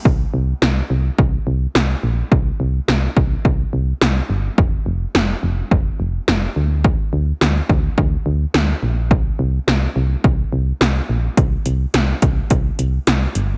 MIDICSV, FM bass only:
0, 0, Header, 1, 2, 480
1, 0, Start_track
1, 0, Tempo, 566038
1, 45, Time_signature, 4, 2, 24, 8
1, 11512, End_track
2, 0, Start_track
2, 0, Title_t, "FM bass"
2, 0, Program_c, 0, 39
2, 44, Note_on_c, 0, 36, 108
2, 213, Note_off_c, 0, 36, 0
2, 285, Note_on_c, 0, 36, 108
2, 453, Note_off_c, 0, 36, 0
2, 524, Note_on_c, 0, 36, 103
2, 693, Note_off_c, 0, 36, 0
2, 764, Note_on_c, 0, 36, 100
2, 932, Note_off_c, 0, 36, 0
2, 1005, Note_on_c, 0, 36, 96
2, 1173, Note_off_c, 0, 36, 0
2, 1244, Note_on_c, 0, 36, 99
2, 1412, Note_off_c, 0, 36, 0
2, 1484, Note_on_c, 0, 36, 96
2, 1652, Note_off_c, 0, 36, 0
2, 1724, Note_on_c, 0, 34, 94
2, 1892, Note_off_c, 0, 34, 0
2, 1964, Note_on_c, 0, 36, 107
2, 2132, Note_off_c, 0, 36, 0
2, 2204, Note_on_c, 0, 36, 99
2, 2372, Note_off_c, 0, 36, 0
2, 2443, Note_on_c, 0, 36, 103
2, 2612, Note_off_c, 0, 36, 0
2, 2684, Note_on_c, 0, 36, 98
2, 2853, Note_off_c, 0, 36, 0
2, 2925, Note_on_c, 0, 36, 102
2, 3093, Note_off_c, 0, 36, 0
2, 3163, Note_on_c, 0, 36, 96
2, 3332, Note_off_c, 0, 36, 0
2, 3404, Note_on_c, 0, 36, 98
2, 3572, Note_off_c, 0, 36, 0
2, 3643, Note_on_c, 0, 31, 101
2, 3811, Note_off_c, 0, 31, 0
2, 3884, Note_on_c, 0, 29, 113
2, 4053, Note_off_c, 0, 29, 0
2, 4123, Note_on_c, 0, 29, 105
2, 4291, Note_off_c, 0, 29, 0
2, 4364, Note_on_c, 0, 29, 98
2, 4532, Note_off_c, 0, 29, 0
2, 4605, Note_on_c, 0, 29, 105
2, 4773, Note_off_c, 0, 29, 0
2, 4844, Note_on_c, 0, 29, 100
2, 5012, Note_off_c, 0, 29, 0
2, 5085, Note_on_c, 0, 29, 98
2, 5253, Note_off_c, 0, 29, 0
2, 5324, Note_on_c, 0, 29, 103
2, 5492, Note_off_c, 0, 29, 0
2, 5564, Note_on_c, 0, 38, 91
2, 5900, Note_off_c, 0, 38, 0
2, 6044, Note_on_c, 0, 38, 94
2, 6212, Note_off_c, 0, 38, 0
2, 6285, Note_on_c, 0, 38, 107
2, 6453, Note_off_c, 0, 38, 0
2, 6525, Note_on_c, 0, 38, 101
2, 6693, Note_off_c, 0, 38, 0
2, 6765, Note_on_c, 0, 38, 101
2, 6933, Note_off_c, 0, 38, 0
2, 7003, Note_on_c, 0, 38, 95
2, 7172, Note_off_c, 0, 38, 0
2, 7243, Note_on_c, 0, 38, 105
2, 7411, Note_off_c, 0, 38, 0
2, 7484, Note_on_c, 0, 34, 91
2, 7723, Note_on_c, 0, 36, 105
2, 7736, Note_off_c, 0, 34, 0
2, 7892, Note_off_c, 0, 36, 0
2, 7964, Note_on_c, 0, 36, 106
2, 8132, Note_off_c, 0, 36, 0
2, 8205, Note_on_c, 0, 36, 104
2, 8373, Note_off_c, 0, 36, 0
2, 8445, Note_on_c, 0, 36, 102
2, 8613, Note_off_c, 0, 36, 0
2, 8686, Note_on_c, 0, 36, 98
2, 8853, Note_off_c, 0, 36, 0
2, 8925, Note_on_c, 0, 36, 98
2, 9093, Note_off_c, 0, 36, 0
2, 9165, Note_on_c, 0, 36, 96
2, 9333, Note_off_c, 0, 36, 0
2, 9407, Note_on_c, 0, 34, 89
2, 9574, Note_off_c, 0, 34, 0
2, 9645, Note_on_c, 0, 36, 107
2, 9813, Note_off_c, 0, 36, 0
2, 9886, Note_on_c, 0, 36, 98
2, 10053, Note_off_c, 0, 36, 0
2, 10124, Note_on_c, 0, 36, 101
2, 10292, Note_off_c, 0, 36, 0
2, 10365, Note_on_c, 0, 36, 94
2, 10533, Note_off_c, 0, 36, 0
2, 10605, Note_on_c, 0, 36, 103
2, 10773, Note_off_c, 0, 36, 0
2, 10844, Note_on_c, 0, 36, 92
2, 11012, Note_off_c, 0, 36, 0
2, 11085, Note_on_c, 0, 36, 103
2, 11253, Note_off_c, 0, 36, 0
2, 11324, Note_on_c, 0, 31, 99
2, 11492, Note_off_c, 0, 31, 0
2, 11512, End_track
0, 0, End_of_file